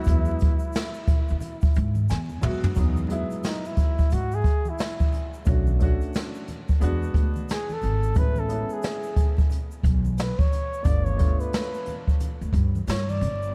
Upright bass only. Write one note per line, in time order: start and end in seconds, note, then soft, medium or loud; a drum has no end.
0.07 0.53 E2 loud
1.30 1.41 D#2 medium
1.63 muted upright bass stroke soft
1.76 2.04 G#2 loud
2.10 2.38 E2 loud
2.44 2.72 D#2 medium
2.77 3.23 E2 loud
4.12 4.40 G#2 medium
5.47 5.92 B1 loud
6.82 7.10 E2 loud
7.15 7.43 D2 medium
7.83 8.11 G#1 medium
8.16 8.62 A1 loud
9.84 10.30 B1 loud
10.85 11.31 G1 loud
12.41 12.52 D2 medium
12.53 12.82 G2 loud
12.87 13.22 G2 loud
13.21 13.55 G1 medium